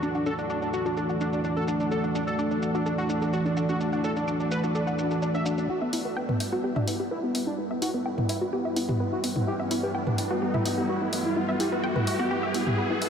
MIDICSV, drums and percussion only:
0, 0, Header, 1, 2, 480
1, 0, Start_track
1, 0, Key_signature, 1, "minor"
1, 0, Tempo, 472441
1, 25, Time_signature, 4, 2, 24, 8
1, 13299, End_track
2, 0, Start_track
2, 0, Title_t, "Drums"
2, 27, Note_on_c, 9, 82, 41
2, 128, Note_off_c, 9, 82, 0
2, 151, Note_on_c, 9, 82, 19
2, 252, Note_off_c, 9, 82, 0
2, 266, Note_on_c, 9, 82, 67
2, 368, Note_off_c, 9, 82, 0
2, 390, Note_on_c, 9, 82, 32
2, 492, Note_off_c, 9, 82, 0
2, 506, Note_on_c, 9, 82, 40
2, 607, Note_off_c, 9, 82, 0
2, 630, Note_on_c, 9, 82, 21
2, 732, Note_off_c, 9, 82, 0
2, 746, Note_on_c, 9, 82, 71
2, 848, Note_off_c, 9, 82, 0
2, 870, Note_on_c, 9, 82, 31
2, 972, Note_off_c, 9, 82, 0
2, 986, Note_on_c, 9, 82, 42
2, 1088, Note_off_c, 9, 82, 0
2, 1110, Note_on_c, 9, 82, 20
2, 1212, Note_off_c, 9, 82, 0
2, 1226, Note_on_c, 9, 82, 64
2, 1328, Note_off_c, 9, 82, 0
2, 1350, Note_on_c, 9, 82, 30
2, 1451, Note_off_c, 9, 82, 0
2, 1466, Note_on_c, 9, 82, 40
2, 1567, Note_off_c, 9, 82, 0
2, 1590, Note_on_c, 9, 82, 19
2, 1692, Note_off_c, 9, 82, 0
2, 1706, Note_on_c, 9, 82, 71
2, 1808, Note_off_c, 9, 82, 0
2, 1830, Note_on_c, 9, 82, 32
2, 1932, Note_off_c, 9, 82, 0
2, 1946, Note_on_c, 9, 82, 44
2, 2047, Note_off_c, 9, 82, 0
2, 2070, Note_on_c, 9, 82, 21
2, 2172, Note_off_c, 9, 82, 0
2, 2186, Note_on_c, 9, 82, 71
2, 2288, Note_off_c, 9, 82, 0
2, 2310, Note_on_c, 9, 82, 34
2, 2412, Note_off_c, 9, 82, 0
2, 2426, Note_on_c, 9, 82, 43
2, 2528, Note_off_c, 9, 82, 0
2, 2550, Note_on_c, 9, 82, 22
2, 2652, Note_off_c, 9, 82, 0
2, 2666, Note_on_c, 9, 82, 74
2, 2768, Note_off_c, 9, 82, 0
2, 2790, Note_on_c, 9, 82, 32
2, 2892, Note_off_c, 9, 82, 0
2, 2906, Note_on_c, 9, 82, 42
2, 3008, Note_off_c, 9, 82, 0
2, 3030, Note_on_c, 9, 82, 22
2, 3131, Note_off_c, 9, 82, 0
2, 3146, Note_on_c, 9, 82, 71
2, 3247, Note_off_c, 9, 82, 0
2, 3270, Note_on_c, 9, 82, 33
2, 3371, Note_off_c, 9, 82, 0
2, 3386, Note_on_c, 9, 82, 40
2, 3487, Note_off_c, 9, 82, 0
2, 3510, Note_on_c, 9, 82, 20
2, 3612, Note_off_c, 9, 82, 0
2, 3625, Note_on_c, 9, 82, 78
2, 3727, Note_off_c, 9, 82, 0
2, 3749, Note_on_c, 9, 82, 33
2, 3851, Note_off_c, 9, 82, 0
2, 3866, Note_on_c, 9, 82, 44
2, 3967, Note_off_c, 9, 82, 0
2, 3990, Note_on_c, 9, 82, 20
2, 4091, Note_off_c, 9, 82, 0
2, 4106, Note_on_c, 9, 82, 72
2, 4207, Note_off_c, 9, 82, 0
2, 4230, Note_on_c, 9, 82, 33
2, 4332, Note_off_c, 9, 82, 0
2, 4346, Note_on_c, 9, 82, 44
2, 4447, Note_off_c, 9, 82, 0
2, 4470, Note_on_c, 9, 82, 23
2, 4572, Note_off_c, 9, 82, 0
2, 4586, Note_on_c, 9, 82, 76
2, 4687, Note_off_c, 9, 82, 0
2, 4710, Note_on_c, 9, 82, 33
2, 4812, Note_off_c, 9, 82, 0
2, 4826, Note_on_c, 9, 82, 43
2, 4927, Note_off_c, 9, 82, 0
2, 4950, Note_on_c, 9, 82, 21
2, 5052, Note_off_c, 9, 82, 0
2, 5066, Note_on_c, 9, 82, 71
2, 5168, Note_off_c, 9, 82, 0
2, 5190, Note_on_c, 9, 82, 32
2, 5291, Note_off_c, 9, 82, 0
2, 5306, Note_on_c, 9, 82, 42
2, 5407, Note_off_c, 9, 82, 0
2, 5430, Note_on_c, 9, 82, 22
2, 5532, Note_off_c, 9, 82, 0
2, 5545, Note_on_c, 9, 82, 79
2, 5647, Note_off_c, 9, 82, 0
2, 5669, Note_on_c, 9, 82, 34
2, 5771, Note_off_c, 9, 82, 0
2, 6025, Note_on_c, 9, 46, 93
2, 6126, Note_off_c, 9, 46, 0
2, 6389, Note_on_c, 9, 45, 76
2, 6491, Note_off_c, 9, 45, 0
2, 6505, Note_on_c, 9, 46, 100
2, 6607, Note_off_c, 9, 46, 0
2, 6869, Note_on_c, 9, 45, 77
2, 6971, Note_off_c, 9, 45, 0
2, 6985, Note_on_c, 9, 46, 95
2, 7087, Note_off_c, 9, 46, 0
2, 7465, Note_on_c, 9, 46, 100
2, 7567, Note_off_c, 9, 46, 0
2, 7946, Note_on_c, 9, 46, 103
2, 8047, Note_off_c, 9, 46, 0
2, 8310, Note_on_c, 9, 45, 75
2, 8412, Note_off_c, 9, 45, 0
2, 8425, Note_on_c, 9, 46, 103
2, 8527, Note_off_c, 9, 46, 0
2, 8905, Note_on_c, 9, 46, 96
2, 9007, Note_off_c, 9, 46, 0
2, 9030, Note_on_c, 9, 45, 89
2, 9131, Note_off_c, 9, 45, 0
2, 9385, Note_on_c, 9, 46, 107
2, 9487, Note_off_c, 9, 46, 0
2, 9510, Note_on_c, 9, 45, 75
2, 9611, Note_off_c, 9, 45, 0
2, 9865, Note_on_c, 9, 46, 103
2, 9967, Note_off_c, 9, 46, 0
2, 10229, Note_on_c, 9, 45, 75
2, 10331, Note_off_c, 9, 45, 0
2, 10345, Note_on_c, 9, 46, 102
2, 10447, Note_off_c, 9, 46, 0
2, 10710, Note_on_c, 9, 45, 73
2, 10812, Note_off_c, 9, 45, 0
2, 10826, Note_on_c, 9, 46, 97
2, 10927, Note_off_c, 9, 46, 0
2, 11305, Note_on_c, 9, 46, 116
2, 11407, Note_off_c, 9, 46, 0
2, 11785, Note_on_c, 9, 46, 104
2, 11887, Note_off_c, 9, 46, 0
2, 12149, Note_on_c, 9, 45, 76
2, 12251, Note_off_c, 9, 45, 0
2, 12265, Note_on_c, 9, 46, 101
2, 12366, Note_off_c, 9, 46, 0
2, 12745, Note_on_c, 9, 46, 99
2, 12847, Note_off_c, 9, 46, 0
2, 12869, Note_on_c, 9, 45, 90
2, 12971, Note_off_c, 9, 45, 0
2, 13225, Note_on_c, 9, 46, 109
2, 13299, Note_off_c, 9, 46, 0
2, 13299, End_track
0, 0, End_of_file